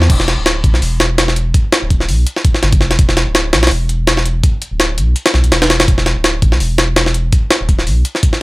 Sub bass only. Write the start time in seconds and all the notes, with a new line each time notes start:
0.10 E1
0.38 D1
0.64 B1
0.82 E1
1.82 D1
2.09 B1
2.63 G1
2.81 E1
2.99 E1
3.27 D1
3.53 B1
3.71 E1
4.71 D1
4.98 B1
5.34 B1
5.44 B1
5.52 E1
5.88 E1
6.16 D1
6.42 B1
6.60 E1
7.61 D1
7.87 B1